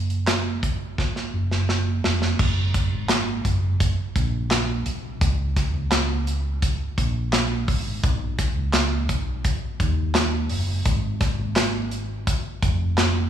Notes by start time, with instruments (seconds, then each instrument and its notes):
Already playing: fingered electric bass F#1
0.10 closed hi-hat
0.27 snare, clap, closed hi-hat
0.63 kick, closed hi-hat
0.98 kick, snare
1.16 snare
1.33 fingered electric bass F#1
1.51 snare
1.69 snare
2.04 fingered electric bass F1, snare
2.22 snare
2.39 fingered electric bass F#1, kick, crash
2.74 kick, closed hi-hat
2.92 fingered electric bass G#1
3.09 snare, clap, closed hi-hat
3.45 fingered electric bass F#1, kick, closed hi-hat
3.80 kick, closed hi-hat
4.16 fingered electric bass A#1, kick, closed hi-hat
4.51 snare, clap, closed hi-hat
4.86 fingered electric bass C2, closed hi-hat
5.21 fingered electric bass C#2, kick, closed hi-hat
5.56 kick, snare, closed hi-hat
5.74 fingered electric bass C#2
5.92 snare, clap, closed hi-hat
6.27 closed hi-hat
6.62 kick, closed hi-hat
6.98 fingered electric bass A#1, kick, closed hi-hat
7.33 snare, clap, closed hi-hat
7.68 fingered electric bass G#1, kick, open hi-hat
8.03 fingered electric bass B1, kick, closed hi-hat
8.38 kick, snare, closed hi-hat
8.56 fingered electric bass C#2
8.73 snare, clap, closed hi-hat
9.09 fingered electric bass B1, kick, closed hi-hat
9.44 kick, closed hi-hat
9.80 fingered electric bass D#2, kick, closed hi-hat
10.15 snare, clap, closed hi-hat
10.49 fingered electric bass F#1, open hi-hat
10.85 fingered electric bass G#1, kick, closed hi-hat
11.20 kick, snare, closed hi-hat
11.38 fingered electric bass G#1
11.56 snare, clap, closed hi-hat
11.91 closed hi-hat
12.27 kick, closed hi-hat
12.62 fingered electric bass F1, kick, closed hi-hat
12.98 snare, clap, closed hi-hat